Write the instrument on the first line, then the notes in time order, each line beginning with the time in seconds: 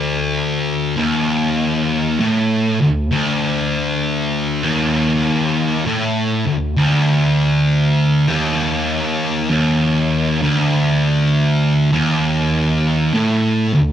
distorted electric guitar
Already playing: D2
0.96 D#2
2.20 A2
2.81 D2
3.12 D2
4.63 D#2
5.86 A2
6.46 D2
6.77 D2
8.27 D#2
9.50 D#2
10.42 D2
11.91 D#2
13.14 A2
13.74 D2